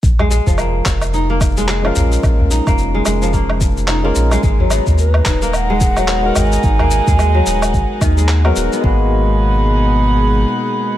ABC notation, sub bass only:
X:1
M:4/4
L:1/16
Q:"Swing 16ths" 1/4=109
K:G#dor
V:1 name="Sub bass" clef=bass
A,,,3 E,,,3 E,,,8 A,,, z | A,,,3 E,,,3 E,,,8 A,,, z | G,,,3 D,,3 D,,,8 G,,, z | G,,,3 D,,3 D,,,2 G,,, z D,,4 D,,, z |
G,,,12 z4 |]